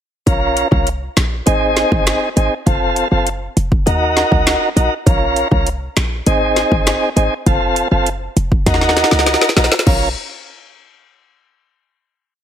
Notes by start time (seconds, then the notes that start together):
0.26 A#1 C#4 F4 A#4, kick, closed hi-hat
0.57 closed hi-hat
0.71 C2 C#4 F4 A#4, kick
0.87 closed hi-hat
1.17 A#1, finger snap, snare, closed hi-hat
1.46 G#1 C4 D#4 G#4, closed hi-hat
1.77 snare, closed hi-hat
1.92 G#1, kick
2.07 finger snap, snare, closed hi-hat
2.36 G#1 C4 D#4 G#4, closed hi-hat
2.66 F1 C4 F4 A4, kick, closed hi-hat
2.96 closed hi-hat
3.11 F#1 C4 F4 A4
3.27 closed hi-hat
3.57 F1, closed hi-hat
3.72 kick
3.86 D#2 D#4 F#4 A#4, closed hi-hat
4.17 snare, closed hi-hat
4.32 C#2, kick
4.47 finger snap, snare, closed hi-hat
4.76 A#1 D#4 F#4 A#4, closed hi-hat
5.06 A#1 C#4 F4 A#4, kick, closed hi-hat
5.36 closed hi-hat
5.51 C2 C#4 F4 A#4, kick
5.67 closed hi-hat
5.97 A#1, finger snap, snare, closed hi-hat
6.26 G#1 C4 D#4 G#4, closed hi-hat
6.56 snare, closed hi-hat
6.72 G#1, kick
6.87 finger snap, snare, closed hi-hat
7.16 G#1 C4 D#4 G#4, closed hi-hat
7.46 F1 C4 F4 A4, kick, closed hi-hat
7.76 closed hi-hat
7.91 F#1 C4 F4 A4
8.06 closed hi-hat
8.37 F1, closed hi-hat
8.52 kick
8.66 D#2 D#4 F#4 A#4, kick, snare, closed hi-hat
8.74 snare
8.81 snare
8.89 snare
8.97 snare, closed hi-hat
9.04 snare
9.11 C#2, snare
9.19 snare
9.26 snare, closed hi-hat
9.34 snare
9.41 snare
9.49 snare
9.56 A#1 D#4 F#4 A#4, snare, closed hi-hat
9.64 snare
9.72 snare
9.79 snare
9.86 A#1 C#4 F4 A#4, kick, crash